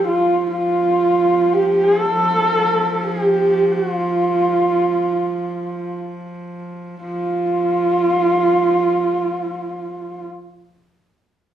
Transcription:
Already playing: F3
0.08 F4
0.51 F4
1.53 G4
1.83 G#4
2.00 A4
3.07 G4
3.72 F#4
3.90 F4
7.03 F3 F4

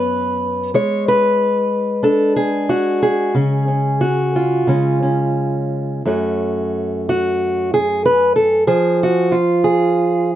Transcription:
Already playing: F#2 B3 B4
0.74 G#3 C#5
1.08 B4
2.03 D4 A4
2.36 G#4
2.69 F#4
3.03 G#4
3.35 C#3 C#4
3.68 C#4
4.01 F#4
4.36 F4
4.67 C#3 G#3 C#4
5.03 C#4
6.05 F#2 A3 C#4 F#4
7.09 F#4
7.74 G#4
8.06 B4
8.36 A4
8.67 F3 G#4
9.03 F#4
9.32 F4
9.64 G#4

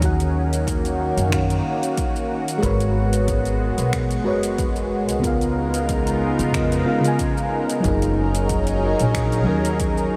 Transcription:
Already playing: D#2 D#3 C#4
0.00 D#3 A#3 C#4 F#4, kick, closed hi-hat, shaker
0.05 F#5
0.20 closed hi-hat, shaker
0.53 closed hi-hat, shaker
0.67 kick, closed hi-hat, shaker
0.85 closed hi-hat, shaker
1.17 F#2, closed hi-hat, shaker
1.29 D#3 C#4 F#4, finger snap, kick, closed hi-hat, shaker
1.33 F5
1.50 closed hi-hat, shaker
1.83 closed hi-hat, shaker
1.97 kick, closed hi-hat, shaker
2.16 shaker
2.48 closed hi-hat, shaker
2.58 G#3 F#4
2.62 G#1 G#3 B3 A#4 B4 C#5, kick, closed hi-hat, shaker
2.80 closed hi-hat, shaker
3.13 closed hi-hat, shaker
3.28 kick, closed hi-hat, shaker
3.45 closed hi-hat, shaker
3.78 B1, closed hi-hat, shaker
3.93 finger snap, kick, closed hi-hat, shaker
4.11 closed hi-hat, shaker
4.24 F#1 G#3 F#4 A#4 B4
4.28 C#5
4.43 closed hi-hat, shaker
4.58 kick, closed hi-hat, shaker
4.76 shaker
5.09 C#2, closed hi-hat, shaker
5.19 C#3 B3
5.23 C#3 B3 D#4 F4 A#4, kick, closed hi-hat, shaker
5.27 F5
5.41 closed hi-hat, shaker
5.74 closed hi-hat, shaker
5.89 kick, closed hi-hat, shaker
6.07 closed hi-hat, shaker
6.39 F2, closed hi-hat, shaker
6.52 C#3 B3 F4 A#4, finger snap, kick, closed hi-hat, shaker
6.56 D#5
6.72 closed hi-hat, shaker
6.84 C#3 B3 F4 A#4 F5
7.00 C#3 B3 F4
7.04 A#4 G#5, closed hi-hat, shaker
7.19 kick, closed hi-hat, shaker
7.37 shaker
7.70 closed hi-hat, shaker
7.80 F#3 C#4 D#4 G#4 A#4
7.84 F#1 G#4 A#4, kick, closed hi-hat, shaker
8.02 closed hi-hat, shaker
8.35 closed hi-hat, shaker
8.49 kick, closed hi-hat, shaker
8.67 closed hi-hat, shaker
8.99 A#1, closed hi-hat, shaker
9.15 finger snap, kick, closed hi-hat, shaker
9.32 closed hi-hat, shaker
9.44 D#2 F#3 D#4 G#4
9.48 A#4
9.65 closed hi-hat, shaker
9.80 kick, closed hi-hat, shaker
9.98 shaker

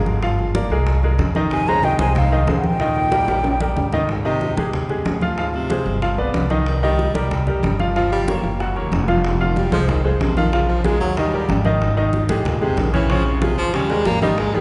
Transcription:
Already playing: G1 G#3 G#4 A#4
0.06 high bongo, high conga
0.22 F3 F4 F5, high bongo, high conga
0.39 high bongo, high conga
0.55 A#3 A#4 D5, high bongo, high conga
0.70 C2 G#3 G#4 A#4, high conga
0.87 high bongo, high conga
1.03 G#3 G#4 A#4, high bongo, high conga
1.18 F2, high bongo, low bongo, high conga
1.35 D#3 D#4 D#5, high bongo, high conga
1.51 C3 G#5, high bongo, high conga
1.67 C#3 G#3 G#4 C5 A#5, high bongo, high conga
1.83 C3 D#3 D#4 D#5 G5, high bongo, high conga
1.99 C2 C3 G#3 G#4 C5 G#5, high bongo, high conga
2.15 G#2 F5, high bongo, high conga, low conga
2.31 D#3 D#4 D#5, high conga
2.47 D#2 G#3 G#4 C5, high bongo, low bongo, high conga
2.57 G#2 F#5
2.64 A#2 G5, high bongo, high conga
2.80 D#3 D#4 D#5, high bongo, high conga
2.96 high bongo, high conga
3.12 G3 G4 A#4, high bongo, high conga
3.28 A#1 G3 G4 A#4, high bongo, high conga
3.44 low bongo, high conga
3.60 G3 G4 A#4, high conga
3.76 G#1, low bongo, low conga
3.92 D#3 D#4 D#5, low bongo, low conga
4.09 G#2, high bongo, high conga
4.25 C3 D#3 D#4 D#5, high bongo, high conga
4.41 high bongo, high conga
4.57 D#2 G#3 G4 G#4, high bongo, high conga
4.73 high bongo, high conga, low conga
4.89 G#3 G4 G#4, high conga, low conga
5.05 D2, high bongo, low bongo, high conga
5.21 F3 F4 F5, high bongo, high conga
5.38 G#2 F3 F4 F5, high bongo, high conga
5.54 C3, high bongo, high conga
5.70 G#3 G#4 C5, high bongo, high conga
5.86 G1, high conga
6.02 F3 F4 F5, high bongo, high conga
6.18 B1 B3 B4 D5, high bongo, high conga
6.34 C2, high bongo, low bongo, high conga
6.50 D#3 D#4 D#5, high bongo, high conga
6.66 D#3, high bongo, high conga
6.83 D#3 G3 D#4 D#5, high bongo, high conga
6.99 high bongo, high conga
7.14 C2 G3 G4 A#4, high bongo, high conga
7.31 high bongo, high conga, low conga
7.47 G3 G4 A#4, high conga, low conga
7.63 G1, high bongo, low bongo, high conga
7.79 F3 F4 F5, high bongo, high conga
7.95 F3 F4 F5, high bongo, high conga
8.12 G3, high bongo, high conga
8.28 A#3 A#4 C#5, high bongo, high conga
8.43 F#1, high conga
8.60 F#3 F#4 F#5, high bongo, high conga
8.76 D#2 A#3 A#4 C#5, high bongo, high conga
8.91 F1 E2, high bongo, low bongo, high conga
9.08 G2 F3 F4 F5, high bongo, high conga
9.24 G#2, high bongo
9.36 C3
9.40 F3 F4 F5, high bongo, high conga
9.46 D#3
9.56 G3, high bongo, high conga
9.72 C2 F3 G#3 G#4 C5, high bongo, high conga
9.88 D#3, high bongo, high conga, low conga
10.04 G2 G#3 G#4 C5, high conga
10.20 A#1 C3, high bongo, low bongo, high conga
10.37 D#3 F3 F4 F5, high bongo, high conga
10.53 C#3 F3 F4 F5, high bongo, high conga
10.69 F3, high bongo, high conga
10.84 G#3 G#4 A#4, high bongo, high conga
11.00 D#2 F#3, high conga
11.17 D#3 G3 D#4 D#5, high bongo, high conga
11.33 A#1 G3 G4 A#4, high bongo, high conga
11.49 G#1, high bongo, low bongo, high conga
11.65 D#3 D#4 D#5, high bongo, high conga
11.81 high bongo, high conga
11.97 D#3 D#4 D#5, high bongo, high conga
12.13 high bongo, high conga
12.29 D#2 A2 G#3 G4 G#4, high bongo, high conga
12.45 A#2, high bongo, high conga, low conga
12.61 C3 G#3 G4 G#4, high conga
12.77 A#1 D#3, high bongo, low bongo, high conga
12.93 C#3 E3 C#4 C#5, high bongo, high conga
13.10 C#3 F3 C#4 C#5, high bongo, high conga
13.26 G#2, high bongo, high conga
13.42 C3 F3 F4 G#4, high bongo, high conga
13.57 D#2 F3, high conga
13.74 C#3 G3 C#4 C#5, high bongo, high conga
13.89 G3 G#3 G4 A#4, high bongo, high conga
14.05 G#1 A#3, high bongo, high conga
14.22 D#3 G3 D#4 D#5, low bongo, high conga
14.38 G#3, high bongo, high conga
14.54 D#3 G3 G4 G#4, high bongo, high conga

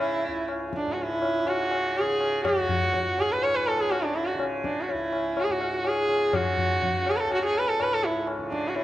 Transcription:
Already playing: C#2 G#2 C#3
0.01 E4
0.24 tabla te
0.28 C#2
0.48 tabla na
0.73 D4, tabla ke
0.86 G#2
0.93 F#4
0.98 tabla tin
1.02 E4
1.22 tabla na
1.43 C#3, tabla na
1.49 F#4
1.71 tabla na
1.97 G#4, tabla na
2.01 C#3
2.21 tabla na
2.45 F#4, tabla na, tabla ge
2.60 C#2
2.69 tabla ge
2.94 tabla tin, tabla ge
3.18 G#2 G#4, tabla na
3.32 B4
3.43 C#5, tabla na
3.56 B4
3.68 A4, tabla na
3.75 C#3
3.81 G#4
3.91 F#4, tabla na
4.02 D4
4.15 E4, tabla te
4.26 F#4
4.34 C#3
4.40 tabla na
4.64 D4, tabla ke
4.81 F#4
4.89 E4, tabla tin
4.93 C#2
5.13 tabla na
5.37 F#4, tabla na
5.44 G#4
5.48 G#2 F#4
5.61 tabla na
5.85 G#4, tabla na
6.07 C#3, tabla na
6.33 F#4, tabla na, tabla ge
6.58 tabla ge
6.65 C#3
6.82 tabla tin, tabla ge
7.06 G#4, tabla na
7.16 A4 B4
7.24 C#2
7.30 F#4, tabla na
7.45 G#4
7.55 B4, tabla na
7.68 A4
7.80 G#2 B4, tabla na
7.93 A4
8.03 E4, tabla te
8.27 tabla na
8.38 C#3
8.51 D4, tabla ke
8.68 F#4
8.75 E4, tabla tin

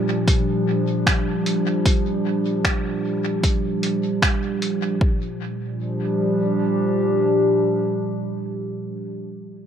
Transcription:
Already playing: A#2 F3 G3 D4 G4
0.28 kick, closed hi-hat
1.07 finger snap, kick, closed hi-hat
1.46 closed hi-hat
1.86 kick, closed hi-hat
2.65 finger snap, kick, closed hi-hat
3.44 kick, closed hi-hat
3.83 closed hi-hat
4.22 finger snap, kick, closed hi-hat
4.62 closed hi-hat
5.01 A#2, kick
5.16 F3
5.28 G3
5.38 D4
5.50 G4

